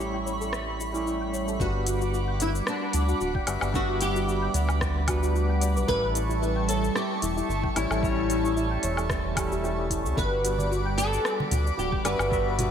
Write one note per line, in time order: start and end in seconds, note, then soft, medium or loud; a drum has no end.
0.00 1.58 A1 medium
0.00 0.92 G3 medium
0.00 1.57 G3 medium
0.00 0.93 A3 medium
0.00 0.94 C#4 medium
0.00 0.12 E4 medium
0.00 0.95 E4 medium
0.00 1.03 G4 medium
0.00 1.62 C#5 medium
0.00 1.56 E5 medium
0.00 1.58 B5 medium
0.00 1.61 B5 medium
0.00 1.56 C#6 medium
0.00 1.61 B6 medium
0.00 cabasa soft
0.14 0.21 G5 medium
0.26 0.34 C#5 medium
0.26 cabasa medium
0.41 0.53 A4 medium
0.41 cabasa soft
0.53 cross-stick medium
0.53 cabasa soft
0.80 0.88 E4 medium
0.80 cabasa medium
0.92 1.56 G3 medium
0.92 1.57 A3 medium
0.92 1.57 C#4 medium
0.92 1.05 E4 medium
0.92 1.58 E4 medium
0.92 1.58 G4 medium
0.92 cabasa soft
1.06 1.19 E4 loud
1.06 cabasa soft
1.21 1.28 G5 medium
1.33 1.41 C#5 medium
1.33 cabasa medium
1.48 1.60 A4 medium
1.48 cabasa soft
1.59 2.62 G1 medium
1.59 3.44 G3 medium
1.59 10.14 G3 medium
1.59 3.45 B3 medium
1.59 3.45 D4 medium
1.59 2.41 F#4 loud
1.59 3.45 F#4 medium
1.59 3.46 B4 medium
1.59 5.85 F#5 medium
1.59 5.85 B5 medium
1.59 5.85 D6 medium
1.59 kick loud
1.59 cabasa soft
1.86 1.95 F#4 medium
1.86 closed hi-hat loud
1.86 cabasa medium
2.01 2.12 F#4 loud
2.01 cabasa soft
2.13 2.27 F#4 loud
2.13 cabasa soft
2.28 2.35 G5 medium
2.40 2.49 E4 medium
2.40 2.48 D5 medium
2.40 closed hi-hat medium
2.40 cabasa medium
2.54 2.66 B4 medium
2.54 cabasa soft
2.67 3.78 D4 loud
2.67 cross-stick medium
2.67 cabasa soft
2.93 3.14 D2 loud
2.93 3.02 F#4 medium
2.93 closed hi-hat loud
2.93 cabasa medium
3.08 3.19 F#4 medium
3.08 cabasa soft
3.20 3.41 D1 loud
3.20 3.34 F#4 loud
3.20 cabasa soft
3.35 3.42 G5 medium
3.35 kick loud
3.47 3.58 G1 medium
3.47 3.71 G3 medium
3.47 3.71 B3 medium
3.47 3.72 D4 medium
3.47 3.72 F#4 medium
3.47 3.55 D5 medium
3.47 3.72 E5 medium
3.47 closed hi-hat loud
3.47 cabasa medium
3.47 low woodblock medium
3.61 4.49 G1 medium
3.61 3.74 B4 medium
3.61 cabasa soft
3.61 low woodblock medium
3.73 5.05 G3 medium
3.73 5.05 B3 medium
3.73 5.05 D4 medium
3.73 4.00 F#4 loud
3.73 5.06 E5 medium
3.73 5.06 F#5 medium
3.73 kick loud
3.73 cabasa soft
4.01 4.09 F#4 medium
4.01 5.58 G4 loud
4.01 closed hi-hat medium
4.01 cabasa medium
4.15 4.26 F#4 loud
4.15 cabasa soft
4.27 4.41 F#4 loud
4.27 cabasa soft
4.42 4.49 G5 medium
4.54 5.77 D2 loud
4.54 4.62 D5 medium
4.54 closed hi-hat medium
4.54 cabasa medium
4.68 4.81 B4 medium
4.68 cabasa soft
4.68 low woodblock medium
4.81 kick loud
4.81 cross-stick medium
4.81 cabasa soft
5.07 5.85 G3 medium
5.07 5.85 B3 medium
5.07 5.86 D4 medium
5.07 5.16 F#4 medium
5.07 5.87 B4 loud
5.07 5.86 F#5 medium
5.07 kick loud
5.07 closed hi-hat medium
5.07 cabasa medium
5.07 low woodblock medium
5.23 5.34 F#4 loud
5.23 cabasa medium
5.35 5.48 F#4 loud
5.35 cabasa soft
5.49 5.56 G5 medium
5.61 5.70 D5 medium
5.61 closed hi-hat medium
5.61 cabasa medium
5.76 5.85 B1 loud
5.76 5.88 B4 medium
5.76 cabasa soft
5.87 6.90 A1 medium
5.87 7.73 G3 medium
5.87 7.73 A3 medium
5.87 7.73 C#4 medium
5.87 7.74 E4 medium
5.87 7.74 A4 medium
5.87 6.68 B4 loud
5.87 10.14 E5 medium
5.87 10.14 A5 medium
5.87 10.13 C#6 medium
5.87 kick loud
5.87 cabasa soft
6.15 6.23 E4 medium
6.15 closed hi-hat medium
6.15 cabasa medium
6.29 6.40 E4 loud
6.29 cabasa soft
6.42 6.55 E4 loud
6.42 cabasa soft
6.56 6.63 G5 medium
6.69 6.95 A4 medium
6.69 6.77 C#5 medium
6.69 closed hi-hat medium
6.69 cabasa medium
6.83 6.95 A4 medium
6.83 cabasa soft
6.96 7.46 G4 medium
6.96 cross-stick medium
6.96 cabasa soft
7.22 7.42 E1 loud
7.22 7.30 E4 medium
7.22 closed hi-hat medium
7.22 cabasa medium
7.36 7.48 E4 loud
7.36 cabasa medium
7.49 7.69 G1 loud
7.49 7.62 E4 loud
7.49 cabasa soft
7.63 7.70 G5 medium
7.63 kick loud
7.76 7.87 A1 medium
7.76 8.00 G3 medium
7.76 8.00 A3 medium
7.76 8.00 C#4 medium
7.76 8.53 E4 loud
7.76 8.00 E4 medium
7.76 7.84 C#5 medium
7.76 8.00 C#5 medium
7.76 closed hi-hat medium
7.76 cabasa medium
7.76 low woodblock medium
7.90 8.78 A1 medium
7.90 8.02 A4 medium
7.90 cabasa soft
7.90 low woodblock medium
8.02 9.33 G3 medium
8.02 9.34 A3 medium
8.02 9.34 C#4 medium
8.02 9.34 E4 medium
8.02 9.35 C#5 medium
8.02 kick loud
8.02 cabasa soft
8.30 8.38 E4 medium
8.30 closed hi-hat medium
8.30 cabasa medium
8.44 8.55 E4 loud
8.44 cabasa soft
8.56 8.69 E4 loud
8.56 cabasa soft
8.71 8.78 G5 medium
8.83 10.07 E1 loud
8.83 8.91 C#5 medium
8.83 closed hi-hat medium
8.83 cabasa medium
8.97 9.09 A4 medium
8.97 cabasa soft
8.97 low woodblock medium
9.10 kick loud
9.10 cross-stick medium
9.10 cabasa soft
9.35 10.14 G3 medium
9.35 10.14 A3 medium
9.35 10.14 C#4 medium
9.35 10.15 E4 medium
9.35 9.45 G4 medium
9.35 10.15 A4 medium
9.35 kick loud
9.35 closed hi-hat medium
9.35 cabasa medium
9.35 low woodblock medium
9.51 9.63 G4 medium
9.51 cabasa medium
9.64 9.77 G4 loud
9.64 cabasa soft
9.78 9.89 G4 medium
9.90 10.04 E4 medium
9.90 kick medium
9.90 closed hi-hat medium
9.90 cabasa medium
10.05 10.14 C#2 loud
10.05 10.16 A4 medium
10.05 cabasa soft
10.15 11.19 G1 loud
10.15 12.01 G3 medium
10.15 12.71 G3 medium
10.15 12.01 B3 medium
10.15 12.02 D4 medium
10.15 12.02 F#4 medium
10.15 10.67 B4 loud
10.15 12.03 B4 medium
10.15 12.71 F#5 medium
10.15 12.71 B5 medium
10.15 12.71 D6 medium
10.15 kick loud
10.15 cabasa soft
10.44 10.52 F#4 medium
10.44 closed hi-hat medium
10.44 cabasa medium
10.58 10.70 D5 medium
10.58 high conga medium
10.58 cabasa soft
10.71 10.84 F#4 loud
10.71 cabasa soft
10.85 10.92 G5 medium
10.98 11.48 A4 loud
10.98 11.05 D5 medium
10.98 closed hi-hat medium
10.98 cabasa medium
11.12 11.24 B4 medium
11.12 cabasa soft
11.25 cross-stick medium
11.25 cabasa soft
11.40 high conga medium
11.51 11.71 D2 loud
11.51 11.59 F#4 medium
11.51 closed hi-hat medium
11.51 low conga medium
11.51 cabasa medium
11.65 11.77 D5 medium
11.65 cabasa soft
11.77 11.98 D1 loud
11.77 11.91 F#4 loud
11.77 12.05 G4 medium
11.77 cabasa soft
11.92 11.99 G5 medium
11.92 kick loud
12.04 12.15 G1 medium
12.04 12.29 G3 medium
12.04 12.29 B3 medium
12.04 12.29 D4 medium
12.04 12.29 F#4 medium
12.04 12.55 B4 loud
12.04 12.13 D5 medium
12.04 12.29 E5 medium
12.04 closed hi-hat medium
12.04 cabasa medium
12.04 low woodblock medium
12.19 12.71 G1 medium
12.19 12.31 B4 medium
12.19 cabasa soft
12.19 low woodblock medium
12.30 12.71 G3 medium
12.30 12.71 B3 medium
12.30 12.71 D4 medium
12.30 12.71 F#4 medium
12.30 12.71 E5 medium
12.30 kick loud
12.30 cabasa soft
12.58 12.66 F#4 medium
12.58 closed hi-hat medium
12.58 low conga medium
12.58 cabasa medium